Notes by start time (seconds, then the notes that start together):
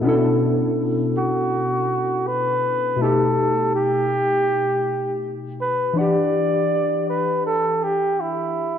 0.01 B2 B3 C#4
0.05 D4 E4 A4
1.17 F#4
2.27 B4
2.96 B2 A3
3.01 D#4 G4 A4
3.75 G4
5.61 B4
5.93 E3 D4
5.98 G4 D5 F#5
7.09 B4
7.46 A4
7.83 G4
8.20 E4